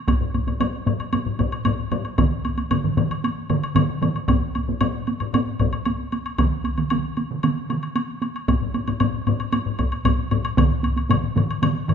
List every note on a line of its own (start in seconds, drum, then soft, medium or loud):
0.08 taiko medium
0.08 taiko low-mid medium
0.08 taiko high medium
0.08 high woodblock soft
0.21 taiko low-mid medium
0.21 taiko high soft
0.34 taiko low-mid medium
0.34 taiko high medium
0.34 high woodblock soft
0.47 taiko low-mid medium
0.47 taiko high soft
0.47 high woodblock soft
0.60 taiko low-mid medium
0.60 taiko high medium
0.60 high woodblock soft
0.74 taiko high soft
0.86 taiko low-mid medium
0.86 taiko high medium
0.86 high woodblock soft
1.00 taiko high soft
1.00 high woodblock soft
1.13 taiko low-mid medium
1.13 taiko high medium
1.13 high woodblock soft
1.26 taiko low-mid medium
1.26 taiko high soft
1.39 taiko medium
1.39 taiko low-mid medium
1.39 taiko high medium
1.39 high woodblock soft
1.52 taiko high soft
1.52 high woodblock soft
1.65 taiko low-mid loud
1.65 taiko high medium
1.65 high woodblock medium
1.79 taiko high soft
1.92 taiko low-mid loud
1.92 taiko high soft
1.92 high woodblock soft
2.05 taiko high soft
2.05 high woodblock soft
2.18 taiko medium
2.18 taiko low-mid medium
2.18 taiko mid medium
2.18 taiko high medium
2.18 high woodblock soft
2.32 taiko high soft
2.45 taiko high medium
2.45 high woodblock soft
2.58 taiko high soft
2.58 high woodblock soft
2.71 taiko low-mid medium
2.71 taiko mid medium
2.71 taiko high medium
2.71 high woodblock medium
2.84 taiko low-mid medium
2.84 taiko mid medium
2.84 taiko high soft
2.97 taiko low-mid medium
2.97 taiko mid medium
2.97 taiko high medium
2.97 high woodblock soft
3.11 taiko high soft
3.11 high woodblock soft
3.24 taiko high medium
3.24 high woodblock soft
3.37 taiko high soft
3.50 taiko low-mid medium
3.50 taiko mid medium
3.50 taiko high medium
3.50 high woodblock soft
3.63 taiko high soft
3.63 high woodblock soft
3.76 taiko low-mid loud
3.76 taiko mid medium
3.76 taiko high medium
3.76 high woodblock medium
3.89 taiko high soft
4.02 taiko low-mid medium
4.02 taiko mid medium
4.02 taiko high medium
4.02 high woodblock soft
4.16 taiko high soft
4.16 high woodblock soft
4.28 taiko medium
4.28 taiko low-mid medium
4.28 taiko high medium
4.28 high woodblock soft
4.42 taiko high soft
4.55 taiko high medium
4.55 high woodblock soft
4.68 taiko low-mid medium
4.68 taiko high medium
4.81 taiko low-mid medium
4.81 taiko high medium
4.81 high woodblock soft
4.95 taiko high soft
5.07 taiko high medium
5.07 high woodblock soft
5.20 taiko low-mid medium
5.20 taiko high soft
5.20 high woodblock soft
5.33 taiko low-mid medium
5.33 taiko high medium
5.33 high woodblock medium
5.48 taiko high soft
5.59 taiko medium
5.59 taiko low-mid medium
5.59 taiko high medium
5.59 high woodblock soft
5.73 taiko high soft
5.73 high woodblock soft
5.85 taiko high medium
5.85 high woodblock soft
6.00 taiko high soft
6.12 taiko high medium
6.12 high woodblock soft
6.26 taiko high soft
6.26 high woodblock soft
6.38 taiko medium
6.38 taiko mid loud
6.38 taiko high medium
6.38 high woodblock soft
6.52 taiko high soft
6.64 taiko high medium
6.64 high woodblock soft
6.78 taiko mid medium
6.78 taiko high medium
6.78 high woodblock soft
6.90 taiko mid medium
6.90 taiko high medium
6.90 high woodblock soft
7.04 taiko high soft
7.17 taiko high medium
7.17 high woodblock soft
7.31 taiko mid medium
7.31 taiko high soft
7.43 taiko mid medium
7.43 taiko high medium
7.43 high woodblock soft
7.57 taiko high soft
7.70 taiko mid medium
7.70 taiko high medium
7.70 high woodblock soft
7.83 taiko high soft
7.83 high woodblock soft
7.96 taiko high medium
7.96 high woodblock soft
8.09 taiko high soft
8.22 taiko high medium
8.22 high woodblock soft
8.35 taiko high soft
8.35 high woodblock soft
8.48 taiko medium
8.48 taiko low-mid medium
8.48 taiko high medium
8.48 high woodblock soft
8.61 taiko low-mid medium
8.61 taiko high soft
8.74 taiko low-mid medium
8.74 taiko high medium
8.74 high woodblock soft
8.88 taiko low-mid medium
8.88 taiko high medium
8.88 high woodblock soft
9.00 taiko low-mid medium
9.00 taiko high medium
9.00 high woodblock medium
9.14 taiko high soft
9.27 taiko low-mid medium
9.27 taiko high medium
9.27 high woodblock soft
9.40 taiko high soft
9.40 high woodblock soft
9.52 taiko low-mid medium
9.52 taiko high medium
9.52 high woodblock medium
9.66 taiko low-mid medium
9.66 taiko high soft
9.79 taiko medium
9.79 taiko low-mid medium
9.79 taiko high medium
9.79 high woodblock soft
9.92 taiko high soft
9.92 high woodblock soft
10.05 taiko medium
10.05 taiko low-mid medium
10.05 taiko high medium
10.05 high woodblock medium
10.19 taiko high soft
10.31 taiko low-mid medium
10.31 taiko high medium
10.31 high woodblock soft
10.45 taiko high soft
10.45 high woodblock soft
10.57 taiko loud
10.57 taiko low-mid medium
10.57 taiko mid loud
10.57 taiko high medium
10.57 high woodblock medium
10.71 taiko high soft
10.83 taiko high medium
10.83 high woodblock soft
10.96 taiko high medium
10.96 high woodblock soft
11.10 taiko low-mid medium
11.10 taiko mid medium
11.10 taiko high medium
11.10 high woodblock medium
11.23 taiko high soft
11.36 taiko low-mid medium
11.36 taiko mid medium
11.36 taiko high medium
11.36 high woodblock soft
11.50 taiko high soft
11.50 high woodblock soft
11.62 taiko low-mid medium
11.62 taiko mid medium
11.62 taiko high medium
11.62 high woodblock medium
11.76 taiko high soft
11.88 taiko low-mid medium
11.88 taiko mid loud
11.88 high woodblock soft